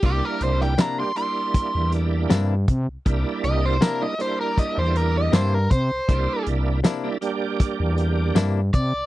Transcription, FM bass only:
\new Staff \with { instrumentName = "FM bass" } { \clef bass \time 4/4 \key c \mixolydian \tempo 4 = 79 c,16 r16 c,8 r4 r16 e,8. g,8 c16 c,16 | c,16 r16 c,8 r4 r16 e,8. g,8 c16 c,16 | c,16 r16 c,8 r4 r16 e,8. g,8 c16 c,16 | }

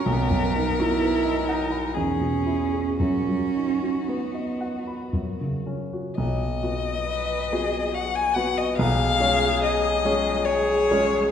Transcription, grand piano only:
\new Staff \with { instrumentName = "Grand piano" } { \time 3/4 \key b \major \tempo 4 = 65 b,,16 fis,16 dis'16 fis'16 b'16 dis''16 fis''16 b''16 e,16 b,16 e'16 gis'16 | fis,16 fis16 dis'16 fis'16 b'16 dis''16 fis''16 b''16 fis,16 cis16 cis'16 fis'16 | b,,8 <b fis' b'>4 <b fis' b'>4 <b fis' b'>8 | b,,8 <gis cis' cis''>4 <gis cis' cis''>4 <gis cis' cis''>8 | }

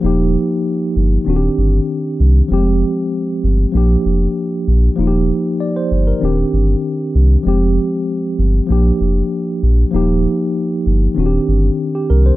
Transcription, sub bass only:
\new Staff \with { instrumentName = "Sub bass" } { \clef bass \time 4/4 \key bes \mixolydian \tempo 4 = 97 ees,,8. r8. g,,8 ees,,8 g,,8 r8 c,8 | f,,8. r8. g,,8 bes,,8 f,,8 r8 bes,,8 | ees,,8. r8. g,,8 ees,,8 g,,8 r8 c,8 | f,,8. r8. g,,8 bes,,8 f,,8 r8 bes,,8 |
ees,,8. r8. g,,8 ees,,8 g,,8 r8 c,8 | }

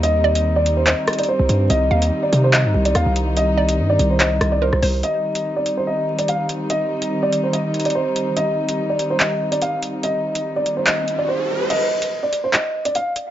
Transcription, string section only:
\new Staff \with { instrumentName = "String section" } { \time 4/4 \key c \minor \tempo 4 = 144 << { <ees ees'>1 | <ees ees'>1~ | <ees ees'>1 | <ees ees'>1~ |
<ees ees'>1~ | <ees ees'>1~ | <ees ees'>1 | r1 | } \\ { <g c'>1~ | <g c'>1~ | <g c'>1 | <g c'>1~ |
<g c'>1~ | <g c'>1~ | <g c'>1 | r1 | } >> }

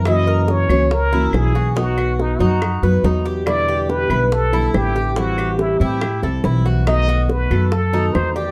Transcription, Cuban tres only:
\new Staff \with { instrumentName = "Cuban tres" } { \time 4/4 \key b \phrygian \tempo 4 = 141 e'8 ais'4 cis''4 e'4 fis'8 | dis'8 fis'4 dis'4 b'8 dis'8 g'8 | e'8 g'4 b'4 e'4 g'8 | e'8 g'4 e'4 a'8 e'8 fis'8 |
dis'8 fis'4 a'4 dis'4 g'8 | }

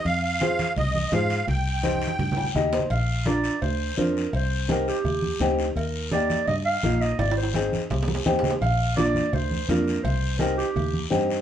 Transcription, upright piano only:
\new Staff \with { instrumentName = "Upright piano" } { \time 4/4 \key c \minor \tempo 4 = 168 r4 <f' aes' c''>8 r4. <f' aes' c''>8 r8 | r4 <ees' g' c''>8 r4 g''8 <ees' g' ees''>8 c''8 | r4 <d' f' bes'>8 r4. <d' f' c''>8 r8 | r4 <c' ees' g'>8 r4. <c' ees' g'>8 r8 |
r4 <bes ees' g'>8 r4. <bes ees' f'>8 r8 | r4 <c' ees' aes'>8 r4. <c' ees' g'>8 r8 | r4 <bes d' f'>8 r4. <bes d' f'>8 r8 | r4 <c' ees' g'>8 r4. <c' ees' g'>8 r8 | }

